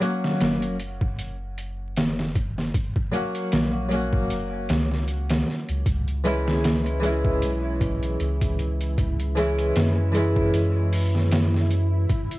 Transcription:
0.00 harpsichord F#3 A#3 C#4 F#4, closed hi-hat
0.24 snare
0.41 sub bass F#1, snare, closed hi-hat
0.62 closed hi-hat
0.80 closed hi-hat
1.01 kick
1.19 closed hi-hat
1.58 closed hi-hat
1.96 snare, closed hi-hat
2.19 snare
2.35 kick, closed hi-hat
2.58 snare
2.74 kick, closed hi-hat
2.96 kick
3.12 harpsichord F#3 A#3 C#4 F#4, closed hi-hat
3.35 closed hi-hat
3.52 sub bass A#1, snare, closed hi-hat
3.89 harpsichord F#3 A#3 C#4, closed hi-hat
3.94 harpsichord F#4
4.13 kick
4.30 sub bass F#1, closed hi-hat
4.69 sub bass C#2, snare, closed hi-hat
4.92 snare
5.08 closed hi-hat
5.30 snare, closed hi-hat
5.48 snare
5.69 sub bass C#2, closed hi-hat
5.86 sub bass C#2, synth drone E4, kick, closed hi-hat
6.08 closed hi-hat
6.24 harpsichord E3 G#3 C#4 E4, closed hi-hat
6.48 snare
6.64 snare, closed hi-hat
6.86 closed hi-hat
7.00 harpsichord E3 G#3 C#4, closed hi-hat
7.05 harpsichord E4
7.24 kick
7.42 sub bass B1, closed hi-hat
7.81 kick, closed hi-hat
8.03 closed hi-hat
8.20 sub bass C#2, closed hi-hat
8.41 kick, closed hi-hat
8.59 closed hi-hat
8.81 closed hi-hat
8.98 kick, closed hi-hat
9.20 closed hi-hat
9.35 harpsichord E3 G#3 C#4 E4, closed hi-hat
9.58 closed hi-hat
9.76 sub bass F#2, snare, closed hi-hat
10.12 harpsichord E3 G#3 C#4, closed hi-hat
10.18 harpsichord E4
10.36 kick
10.54 closed hi-hat
10.93 open hi-hat
11.15 snare
11.31 snare, closed hi-hat
11.54 snare
11.71 closed hi-hat
12.09 kick, closed hi-hat
12.31 closed hi-hat

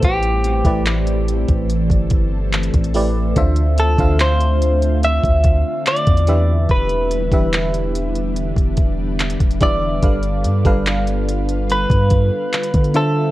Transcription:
Already playing: ambient pad E3 A3 C4 G4, fm electric piano A3 E4 G4 B4 C5
0.03 808-style bass A1, clean electric guitar G4, kick, closed hi-hat
0.23 closed hi-hat
0.44 closed hi-hat
0.65 808-style bass A1, fm electric piano A3 E4 G4 B4 D5, kick, closed hi-hat
0.86 clap, closed hi-hat
1.07 closed hi-hat
1.28 ambient pad A4, closed hi-hat
1.49 808-style bass A1, kick, closed hi-hat
1.70 closed hi-hat
1.90 808-style bass G1, kick, closed hi-hat
2.10 kick, closed hi-hat
2.53 clap, closed hi-hat
2.63 closed hi-hat
2.74 808-style bass A1, kick, closed hi-hat
2.84 closed hi-hat
2.94 fm electric piano A3 E4 G4 B4 D5, open hi-hat
3.36 808-style bass D2, fm electric piano D3 D4 F4 C5 E5, ambient pad D3 F4, kick, closed hi-hat
3.56 closed hi-hat
3.78 clean electric guitar A4, closed hi-hat
3.98 808-style bass D2, fm electric piano D3 D4 F4 C5 F5, kick, closed hi-hat
4.20 clean electric guitar C5, clap, closed hi-hat
4.41 closed hi-hat
4.62 closed hi-hat
4.82 closed hi-hat
5.03 clean electric guitar E5, closed hi-hat
5.23 808-style bass D2, kick, closed hi-hat
5.44 kick, closed hi-hat
5.86 clean electric guitar D5, clap, closed hi-hat
5.97 closed hi-hat
6.07 808-style bass E2, kick, closed hi-hat
6.17 closed hi-hat
6.27 fm electric piano E3 D4 G4 B4 E5, ambient pad G3 B3 E4, closed hi-hat
6.69 808-style bass E1, clean electric guitar B4, kick, closed hi-hat
6.90 closed hi-hat
7.11 closed hi-hat
7.32 808-style bass E1, fm electric piano E3 D4 G4 B4 E5, kick, closed hi-hat
7.53 clap, closed hi-hat
7.74 closed hi-hat
7.94 ambient pad D4, closed hi-hat
8.15 closed hi-hat
8.36 closed hi-hat
8.57 808-style bass E1, kick, closed hi-hat
8.77 kick, closed hi-hat
9.20 clap, closed hi-hat
9.30 closed hi-hat
9.40 808-style bass E1, kick, closed hi-hat
9.51 closed hi-hat
9.61 fm electric piano E3 D4 G4 B4 E5, clean electric guitar D5, kick, closed hi-hat
10.02 808-style bass G1, fm electric piano G3 D4 A4 B4 F5, ambient pad F4, kick, closed hi-hat
10.23 closed hi-hat
10.44 808-style bass G2, closed hi-hat
10.65 808-style bass G1, fm electric piano G3 D4 A4 B4 F5, kick, closed hi-hat
10.86 clap, closed hi-hat
11.07 closed hi-hat
11.29 closed hi-hat
11.49 closed hi-hat
11.70 clean electric guitar B4, closed hi-hat
11.90 808-style bass G2, kick, closed hi-hat
12.10 kick, closed hi-hat
12.53 clap, closed hi-hat
12.63 closed hi-hat
12.74 808-style bass D3, kick, closed hi-hat
12.84 closed hi-hat
12.94 fm electric piano D3 D4 F4 C5 E5, ambient pad A3 C4, clean electric guitar A4, closed hi-hat

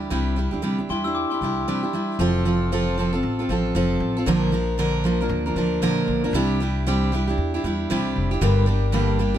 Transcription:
Already playing: steel-string acoustic guitar E4 G4
0.10 upright bass C2, steel-string acoustic guitar C3 G3 D4 E4 G4
0.36 steel-string acoustic guitar G3 D4 E4 G4
0.51 upright bass D2, steel-string acoustic guitar D4 E4 G4
0.62 steel-string acoustic guitar C3 G3 D4 E4 G4
0.78 steel-string acoustic guitar D4 E4 G4
0.89 upright bass E2, steel-string acoustic guitar G3 D4 E4 G4, glockenspiel G5 C6
1.04 steel-string acoustic guitar D4 E4 G4, glockenspiel E6
1.15 glockenspiel G5 D6
1.30 steel-string acoustic guitar D4 E4 G4, glockenspiel G5 C6
1.41 upright bass C2, steel-string acoustic guitar G3 D4 E4 G4
1.68 steel-string acoustic guitar C3 G3 D4 E4 G4
1.83 steel-string acoustic guitar D4 E4 G4
1.93 steel-string acoustic guitar G3 D4 E4 G4
2.19 upright bass F1, steel-string acoustic guitar F3 C4 F4 A4
2.45 steel-string acoustic guitar F3 C4 F4 A4
2.72 steel-string acoustic guitar F3 C4 F4 A4
2.98 steel-string acoustic guitar F3 C4 F4 A4
3.13 steel-string acoustic guitar C4 F4 A4
3.23 upright bass A1
3.39 steel-string acoustic guitar C4 F4 A4
3.49 upright bass A1, steel-string acoustic guitar F3 C4 F4 A4
3.75 upright bass F1, steel-string acoustic guitar F3 C4 F4 A4
4.00 upright bass A1
4.17 steel-string acoustic guitar C4 F4 A4
4.26 upright bass A#1, steel-string acoustic guitar A#2 D3 F3 A#3 D4 A#4
4.52 steel-string acoustic guitar F3 A#3 D4 A#4
4.78 steel-string acoustic guitar A#2 D3 F3 A#3 D4 A#4
5.04 steel-string acoustic guitar F3 A#3 D4 A#4
5.21 steel-string acoustic guitar F3 A#3 D4 A#4
5.29 upright bass D2
5.46 steel-string acoustic guitar F3 A#3 D4 A#4
5.56 upright bass D2, steel-string acoustic guitar F3 A#3 D4 A#4
5.82 upright bass A#1, steel-string acoustic guitar A#2 D3 F3 A#3 D4 A#4
6.08 upright bass A#1
6.24 steel-string acoustic guitar F3 A#3 D4 A#4
6.33 upright bass C2, steel-string acoustic guitar C3 G3 D4 E4 G4
6.60 steel-string acoustic guitar G3 D4 E4 G4
6.87 steel-string acoustic guitar C3 G3 D4 E4 G4
7.12 steel-string acoustic guitar G3 D4 E4 G4
7.27 steel-string acoustic guitar D4 E4 G4
7.38 upright bass E2
7.54 steel-string acoustic guitar D4 E4 G4
7.64 upright bass E2, steel-string acoustic guitar G3 D4 E4 G4
7.90 upright bass C2, steel-string acoustic guitar C3 G3 D4 E4 G4
8.16 upright bass F1
8.31 steel-string acoustic guitar D4 E4 G4
8.41 upright bass G1, steel-string acoustic guitar G2 D3 G3 A#3 D4 G4
8.66 steel-string acoustic guitar G3 A#3 D4 G4
8.92 steel-string acoustic guitar G2 D3 G3 A#3 D4 G4
9.19 steel-string acoustic guitar G3 A#3 D4 G4
9.34 steel-string acoustic guitar G4

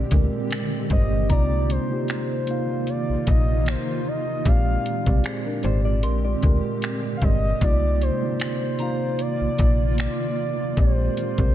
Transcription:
Already playing: tine electric piano A#2 G#3 C4 G4 D5, ambient pad D3 G#3 C4 G4
0.10 fm bass D2, tine electric piano A#2 G#3 C4 G4 A#4, kick, closed hi-hat
0.51 finger snap, closed hi-hat
0.89 fm bass G1, tine electric piano A#2 G#3 C4 G4 C5, soft synth lead D#5, kick
1.29 fm bass C2, tine electric piano C3 A#3 D#4 F4 D5, ambient pad D#3 A#3 D#4 F4, soft synth lead D5, synth bell A#5, kick, closed hi-hat
1.70 soft synth lead C5, closed hi-hat
1.89 tine electric piano C3 A#3 D#4 F4 G4
2.08 soft synth lead C5, finger snap, closed hi-hat
2.47 tine electric piano C3 A#3 D#4 F4 F5, closed hi-hat
2.87 soft synth lead D5, closed hi-hat
3.09 fm bass A#1
3.27 fm bass A#1, soft synth lead D#5, kick, closed hi-hat
3.66 soft synth lead C5, finger snap, closed hi-hat
4.08 soft synth lead D#5
4.44 fm bass A#1, tine electric piano A#2 G#3 C4 G4 D5, ambient pad D3 G#3 C4 G4, soft synth lead F5, kick, closed hi-hat
4.86 closed hi-hat
5.05 fm bass C2, tine electric piano A#2 G#3 C4 G4 D5, kick
5.24 nylon-string guitar C4 G#4, finger snap, closed hi-hat
5.46 nylon-string guitar D4 A#4
5.63 fm bass G#1, tine electric piano A#2 G#3 C4 G4 D5, nylon-string guitar C5, closed hi-hat
5.85 nylon-string guitar F4 D5
6.03 fm bass A#1, nylon-string guitar D4 A#4, synth bell C6, closed hi-hat
6.25 nylon-string guitar F4 D5
6.42 fm bass D2, tine electric piano A#2 G#3 C4 G4 A#4, kick, closed hi-hat
6.82 finger snap, closed hi-hat
7.17 tine electric piano A#2, soft synth lead F5
7.22 fm bass G1, tine electric piano G#3 C4 G4 D5, soft synth lead D#5, kick
7.60 fm bass C2, tine electric piano C3 A#3 D#4 F4 D5, ambient pad D#3 A#3 F4 D5, soft synth lead D5, kick, closed hi-hat
8.02 soft synth lead C5, closed hi-hat
8.21 tine electric piano C3 A#3 D#4 F4 D5
8.40 soft synth lead C5, finger snap, closed hi-hat
8.79 tine electric piano C3 A#3 D#4 F4 F5, synth bell A#5, closed hi-hat
9.19 soft synth lead D5, closed hi-hat
9.41 fm bass A#1
9.58 fm bass A#1, kick, closed hi-hat
9.98 soft synth lead D5, finger snap, closed hi-hat
10.76 fm bass A#1, tine electric piano A#2 G#3 C4 G4 D5, soft synth lead C5, kick, closed hi-hat
11.17 closed hi-hat
11.37 fm bass C2, tine electric piano A#2 G#3 C4 G4 A#4, kick

